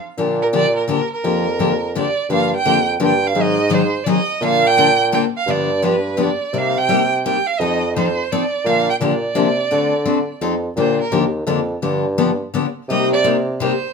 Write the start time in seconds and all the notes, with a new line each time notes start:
0.17 A#2 D3 F3 A#3 D4 G4
0.42 A#4
0.53 D3 F3 A#3 D4 G4 D5
0.76 A#4
0.88 D3 F3 A#3 D4 G4 A#4
1.13 A#4
1.24 F2 D3 F3 A#3 D4 G4
1.59 D3 F3 A#3 D4 G4
1.95 D3 F3 A#3 D4 G4 D5
2.29 G2 D3 F3 A#3 D4 G4 F5
2.57 G5
2.65 F2 D3 F3 A#3 D4 G4
3.00 G2 D3 F3 A#3 D4 G4
3.05 G5
3.27 F5
3.35 G#2 D#3 F#3 C4 D#4 G#4
3.41 D#5
3.70 D#3 F#3 C4 D#4 G#4
3.74 C5
4.04 D#3 F#3 C4 D#4 G#4 D5
4.09 D#5
4.41 A#2 D3 F3 A#3 D4 A4
4.45 F5
4.67 G5
4.77 D3 F3 A#3 D4 A4
5.12 D3 F3 A#3 D4 A4 G5
5.37 F5
5.47 G2 D3 F3 B3 D4 G4 D5
5.82 D3 F3 B3 D4 G4 B4
6.17 D3 F3 B3 D4 G4
6.22 D5
6.53 C3 G3 A#3 D#4 G4
6.58 F5
6.78 G5
6.89 C3 G3 A#3 D#4 G4
7.26 C3 G3 A#3 D#4 G4 G5
7.47 F5
7.59 F2 F3 C4 D#4 A4 D#5
7.96 F3 C4 D#4 A4 C5
8.32 F3 C4 D#4 A4 D5
8.65 A#2 D3 F3 A#3 D4 G4 F5
8.90 G5
9.00 A#2 D3 F3 A#3 D4 G4 D5
9.35 C3 D3 F3 A#3 D4 G4
9.71 D3 A3 C4 F#4 A4
10.05 D3 A3 C4 F#4 A4
10.41 F2 F3 C4 D#4 A4
10.76 A#2 D3 F3 A#3 D4 G4 C5
11.01 A#4
11.11 D#2 D3 F3 A#3 D4 G4
11.46 F2 D3 F3 A#3 D4 G4
11.82 G2 D3 F3 B3 D4 G4
12.18 D3 F3 B3 D4 G4
12.54 D3 F3 B3 D4 G4
12.88 C3 G3 A#3 D#4 G4 D#5
13.13 D5
13.24 C3 G3 A#3 D#4 G4
13.60 C3 G3 A#3 D#4 G4 C5